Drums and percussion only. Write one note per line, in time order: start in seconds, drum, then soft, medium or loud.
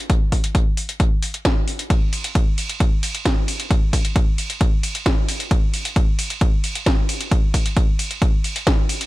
0.10 kick loud
0.10 closed hi-hat medium
0.32 kick medium
0.32 open hi-hat loud
0.44 closed hi-hat medium
0.55 kick loud
0.55 closed hi-hat medium
0.77 open hi-hat loud
0.89 closed hi-hat medium
1.00 kick loud
1.00 closed hi-hat medium
1.22 open hi-hat loud
1.34 closed hi-hat medium
1.45 kick loud
1.45 snare loud
1.45 closed hi-hat medium
1.68 open hi-hat loud
1.79 closed hi-hat medium
1.90 kick loud
1.90 closed hi-hat medium
1.90 ride medium
2.13 open hi-hat loud
2.13 ride medium
2.24 closed hi-hat medium
2.35 kick loud
2.35 closed hi-hat medium
2.35 ride medium
2.58 open hi-hat loud
2.58 ride medium
2.69 closed hi-hat medium
2.80 kick loud
2.80 closed hi-hat medium
2.80 ride medium
3.03 open hi-hat loud
3.03 ride medium
3.15 closed hi-hat medium
3.25 kick loud
3.25 snare loud
3.25 closed hi-hat medium
3.25 ride medium
3.48 open hi-hat loud
3.48 ride medium
3.60 closed hi-hat medium
3.71 kick loud
3.71 closed hi-hat medium
3.71 ride medium
3.93 kick medium
3.93 open hi-hat loud
3.93 ride medium
4.05 closed hi-hat medium
4.16 kick loud
4.16 closed hi-hat medium
4.16 ride medium
4.38 open hi-hat loud
4.38 ride medium
4.50 closed hi-hat medium
4.61 kick loud
4.61 closed hi-hat medium
4.61 ride medium
4.83 open hi-hat loud
4.83 ride medium
4.95 closed hi-hat medium
5.06 kick loud
5.06 snare loud
5.06 closed hi-hat medium
5.28 open hi-hat loud
5.28 ride medium
5.40 closed hi-hat medium
5.51 kick loud
5.51 closed hi-hat medium
5.51 ride medium
5.74 open hi-hat loud
5.74 ride medium
5.85 closed hi-hat medium
5.96 kick loud
5.96 closed hi-hat medium
5.96 ride medium
6.19 open hi-hat loud
6.19 ride medium
6.30 closed hi-hat medium
6.41 kick loud
6.41 closed hi-hat medium
6.41 ride medium
6.64 open hi-hat loud
6.64 ride medium
6.75 closed hi-hat medium
6.86 kick loud
6.86 snare loud
6.86 closed hi-hat medium
6.86 ride medium
7.09 open hi-hat loud
7.09 ride medium
7.21 closed hi-hat medium
7.31 kick loud
7.31 closed hi-hat medium
7.31 ride medium
7.54 kick medium
7.54 open hi-hat loud
7.54 ride medium
7.66 closed hi-hat medium
7.77 kick loud
7.77 closed hi-hat medium
7.77 ride medium
7.99 open hi-hat loud
7.99 ride medium
8.11 closed hi-hat medium
8.22 kick loud
8.22 closed hi-hat medium
8.22 ride medium
8.44 open hi-hat loud
8.44 ride medium
8.56 closed hi-hat medium
8.67 kick loud
8.67 snare loud
8.67 closed hi-hat medium
8.67 ride medium
8.89 open hi-hat loud
8.89 ride medium
9.01 closed hi-hat medium